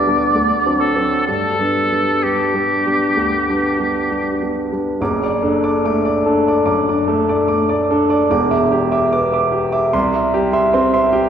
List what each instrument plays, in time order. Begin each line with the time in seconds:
Already playing: grand piano D2 G3 B3 D4, oboe D5
0.07 grand piano G3 B3 D4
0.35 grand piano D2
0.66 grand piano F#3 C4 D4
0.80 oboe A4
0.95 grand piano F#3 C4 D4
1.27 grand piano G2, oboe A4
1.59 grand piano G3 B3 D4
1.91 grand piano G3 B3 D4
2.23 grand piano G3 B3 D4, oboe G4
2.54 grand piano G3 B3 D4
2.86 grand piano G3 B3 D4
3.17 grand piano D2
3.49 grand piano G3 B3 D4
3.79 grand piano G3 B3 D4
4.10 grand piano G3 B3 D4
4.42 grand piano G3 B3 D4
4.72 grand piano G3 B3 D4
5.01 grand piano F#1 F#2 D6
5.23 grand piano D5 D6
5.43 grand piano D4 A4
5.64 grand piano D5 D6
5.85 grand piano A3 D6
6.05 grand piano D5 D6
6.26 grand piano D4 A4
6.47 grand piano D5 D6
6.65 grand piano F#2 D6
6.89 grand piano D4 D5 D6
7.07 grand piano A3 A4
7.29 grand piano D5 D6
7.48 grand piano A3 D6
7.69 grand piano D5 D6
7.91 grand piano D4 A4
8.10 grand piano D5 D6
8.30 grand piano E1 E2 D6
8.51 grand piano E5 D6
8.72 grand piano G4
8.91 grand piano E5 D6
9.12 grand piano B3 D6
9.32 grand piano E5 D6
9.52 grand piano G4
9.72 grand piano E5 D6
9.93 grand piano C2 C6
10.13 grand piano E5 C6
10.34 grand piano G4
10.53 grand piano E5 C6
10.74 grand piano C4 C6
10.93 grand piano E5 C6
11.13 grand piano G4